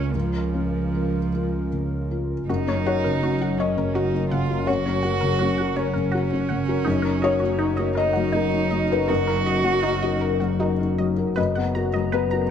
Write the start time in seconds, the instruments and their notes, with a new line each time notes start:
Already playing: felt piano C#2 C#3 C#4 F4 A#4, double bass C#2, cello C#4, analog synth pad C#4 F4 A#4
0.14 felt piano C#2, cello F3
0.54 felt piano C#4
0.94 felt piano F4 A#4
1.34 felt piano F4 A#4
1.73 felt piano C#3
2.11 felt piano F4 A#4
2.48 double bass F#1, felt piano F#2, analog synth pad F#3 C#4 A#4, cello D#4, synth pluck F#4
2.68 felt piano C#4, synth pluck C#5
2.86 felt piano F#4 A#4 C#5, synth pluck F#5
3.04 felt piano C#3, synth pluck A#4
3.23 felt piano C#4, synth pluck F#4
3.41 felt piano F#4 A#4, synth pluck F#5
3.59 cello C#4, synth pluck C#5, felt piano D#5
3.77 felt piano C#3, synth pluck A#4
3.94 cello D#4, synth pluck F#4, felt piano F#4 A#4
4.14 felt piano C#4
4.30 felt piano C#3, cello F4, synth pluck F#5
4.50 felt piano F#4 A#4
4.67 felt piano F#2 C#5, cello F#4, synth pluck F#4
4.86 felt piano C#4, synth pluck C#5
5.03 felt piano F#4 A#4, synth pluck F#5
5.21 felt piano C#3, synth pluck A#4
5.39 felt piano C#4, synth pluck F#4
5.58 felt piano F#4 A#4, synth pluck F#5
5.76 cello C#4, felt piano A#4, synth pluck C#5
5.94 felt piano C#3, synth pluck A#4
6.12 synth pluck F#4, felt piano F#4 A#4
6.33 felt piano C#4
6.49 felt piano C#3, synth pluck F#5
6.69 felt piano F#4 A#4
6.84 double bass F#1, felt piano F#2, synth pluck D#4, analog synth pad D#4 F#4 A#4
7.02 felt piano D#4, synth pluck A#4
7.22 felt piano F#4 A#4 C#5, synth pluck D#5
7.40 felt piano F#3, synth pluck F#4
7.59 synth pluck D#4, felt piano D#4
7.77 felt piano F#4 A#4, synth pluck D#5
7.95 cello D#4, synth pluck A#4, felt piano D#5
8.13 felt piano F#3, synth pluck F#4
8.32 synth pluck D#4, felt piano F#4 A#4
8.53 felt piano D#4
8.71 felt piano F#3, synth pluck D#5
8.91 felt piano F#4 A#4 B4
9.08 felt piano F#2 A#4, synth pluck D#4, cello F#4
9.27 felt piano D#4, synth pluck A#4
9.46 felt piano F#4 A#4, synth pluck D#5
9.64 felt piano F#3, synth pluck F#4
9.83 synth pluck D#4, felt piano D#4
10.02 felt piano F#4 A#4, synth pluck D#5
10.21 synth pluck A#4
10.40 felt piano F#3, synth pluck F#4
10.60 synth pluck D#4, felt piano F#4 A#4
10.80 felt piano D#4
10.98 felt piano F#3, synth pluck D#5
11.18 felt piano F#4 A#4
11.36 double bass F#1, felt piano F#2 D#5, analog synth pad B3 F#4 A#5, synth pluck B4
11.55 felt piano B3, synth pluck F#5
11.75 felt piano F#4 A#4, synth pluck A#5
11.94 felt piano F#3, synth pluck D#5
12.12 felt piano B3 B4, synth pluck B4
12.31 felt piano F#4 A#4, synth pluck A#5